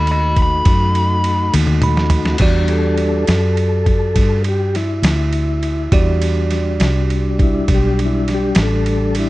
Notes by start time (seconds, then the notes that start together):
Already playing: D#2 A3 D#4 F#4 A4 D#5
0.07 ride
0.11 D#5 B5
0.36 kick, ride
0.42 B5
0.65 F#2, kick, ride
0.95 ride
1.24 ride
1.54 D#2, high tom, ride
1.67 high tom
1.82 B5, mid tom, ride
1.97 snare
2.10 floor tom, ride
2.25 snare
2.38 E2 G3 D4 F#4 G4 D5, kick, crash, ride
2.68 G#4, ride
2.72 A4
2.98 ride
3.27 F#2, snare, ride
3.57 ride
3.86 kick, ride
4.16 G2, kick, ride
4.44 ride
4.48 G4
4.75 E4, snare, ride
5.03 D2, snare, ride
5.07 E4
5.33 ride
5.63 ride
5.92 E2 G3 D4 F#4 G4 D5, kick, ride
6.22 ride
6.51 snare, ride
6.80 C2, snare, ride
7.10 ride
7.39 E4, kick, ride
7.68 B1, kick, ride
7.74 G4
7.99 ride
8.05 E4
8.28 snare, ride
8.34 G4
8.55 A1, snare, ride
8.63 A4
8.86 ride
9.15 ride
9.19 E4